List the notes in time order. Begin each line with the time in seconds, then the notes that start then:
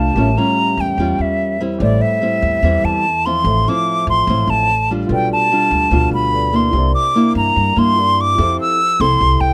Already playing: C2 C3 A3 D4 F4 G4 A4 C5 D5 F5 G5 A5
0.15 A1 A2 G3 C#4 F4 G4 A#4 C#5
0.20 E5
0.38 G3 C#4 F4 A#5
0.77 E2 G5
0.98 E2 G3 C#4 F4
1.19 E2 E5
1.60 G3 C4 E4
1.78 A1 A2 G4 A4 C5 D5
1.84 E5
2.01 E5
2.22 G3 C4 E4
2.42 E2
2.63 E2 E3 G3 C4 E4
2.84 E2 A5
3.26 F3 C4 E4 C6
3.44 A1 A2 A4 C5 E5
3.68 F3 C4 E4 D6
4.07 A1 C6
4.27 A1 A2 F3 C4 E4
4.47 A1 A5
4.90 G3 D4 F4
5.07 B1 B2 F4 A4 B4
5.12 D5 G5
5.33 A5
5.52 G3 D4 F4
5.71 D2
5.91 D2 B2 G3 D4 F4
6.11 D2 B5
6.33 A4 B4 D5
6.53 A#3 D4 E4 C6
6.71 C2 C3 E4 G4
6.75 A#4 D5
6.95 D6
7.15 A#3 D4 E4
7.35 G2 A#5
7.56 G2 G3
7.76 G2 A#3 D4 E4 C6
7.96 E4 G4 A#4 D5
8.21 D6
8.35 F2 F3 C4 E4 G4 A4
8.39 A4 C5
8.61 E6
9.00 C2 C4 E4 A4 C6
9.21 C2 C3
9.41 C2 G5